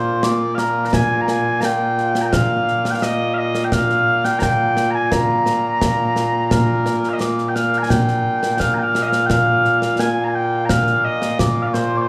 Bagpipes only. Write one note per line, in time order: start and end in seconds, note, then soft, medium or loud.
0.00 12.09 A#2 medium
0.00 12.09 A#3 medium
0.00 12.09 F4 medium
0.00 0.24 C5 medium
0.24 0.55 D5 medium
0.55 0.85 A#4 medium
0.55 0.58 F5 medium
0.85 0.94 A#5 medium
0.94 1.21 G#5 loud
1.21 1.29 A#5 medium
1.29 1.61 G#5 medium
1.61 2.21 G5 loud
1.61 1.64 A#5 loud
2.22 2.26 A#5 medium
2.26 2.33 G5 medium
2.33 2.91 F5 loud
2.91 2.95 G5 medium
2.95 3.03 F5 medium
3.03 3.34 D#5 loud
3.34 3.38 F5 medium
3.38 3.64 D#5 medium
3.64 3.73 G5 medium
3.73 4.25 F5 loud
4.25 4.39 G5 loud
4.39 4.91 G5 loud
4.39 4.42 A#5 loud
4.91 4.95 A#5 loud
4.95 5.12 G#5 loud
5.12 6.51 A#5 loud
6.51 7.09 A#4 medium
7.09 7.13 F5 medium
7.13 7.20 D#5 medium
7.20 7.48 D5 medium
7.48 7.55 G5 medium
7.55 7.78 F5 medium
7.78 7.82 A#5 medium
7.82 7.90 G#5 medium
7.90 8.60 G5 medium
8.60 8.74 F5 medium
8.74 8.78 A#5 medium
8.78 8.84 G5 medium
8.84 9.02 F5 medium
9.02 9.07 D#5 medium
9.07 9.26 F5 medium
9.26 10.00 F5 medium
9.26 9.30 G5 medium
10.00 10.24 G#5 medium
10.24 10.35 G#5 medium
10.24 10.28 A#5 medium
10.35 10.65 G5 medium
10.65 10.69 A#5 medium
10.69 11.05 F5 medium
11.05 11.39 D#5 medium
11.39 11.62 D5 loud
11.62 11.66 F5 medium
11.66 11.73 D5 medium
11.73 11.97 C5 medium
11.97 12.01 D5 medium
12.01 12.08 C5 medium